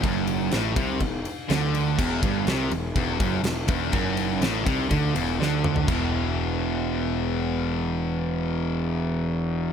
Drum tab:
CC |----------------|x---------------|----------------|x---------------|
RD |x-x-x-x-x-x-x-x-|--x-x-x-x-x-x-x-|x-x-x-x-x-x-----|----------------|
SD |----o-------o---|----o-------o---|----o-------o---|----------------|
T2 |----------------|----------------|--------------o-|----------------|
FT |----------------|----------------|---------------o|----------------|
BD |o-----o-o-------|o-o-----o-o---o-|o-----o-o-------|o---------------|

CC |----------------|
RD |----------------|
SD |----------------|
T2 |----------------|
FT |----------------|
BD |----------------|